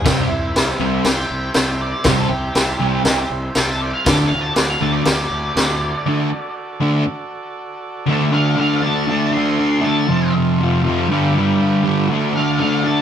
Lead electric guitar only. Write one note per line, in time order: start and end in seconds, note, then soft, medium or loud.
0.06 0.18 G4 loud
0.16 0.27 D4 medium
0.27 0.78 E4 loud
1.07 1.80 G5 loud
1.81 2.06 D5 loud
2.06 2.19 C5 loud
2.18 2.28 A4 medium
2.28 3.27 G4 loud
3.60 3.70 G5 loud
3.70 3.82 A5 medium
3.81 3.93 D5 medium
3.93 4.06 F5 medium
4.04 4.18 A5 medium
4.16 4.28 D5 loud
4.28 4.42 F5 medium
4.41 4.55 A5 loud
4.54 4.69 D5 medium
4.69 4.82 F5 medium
4.81 4.94 A5 medium
4.92 5.02 D5 medium
5.03 6.52 D5 loud
8.34 8.58 F5 loud
8.59 8.83 F5 medium
8.82 9.32 A5 loud
9.33 9.82 C6 medium
9.85 10.33 A5 medium
12.36 12.58 F5 loud
12.59 12.84 F5 loud
12.86 13.02 A5 loud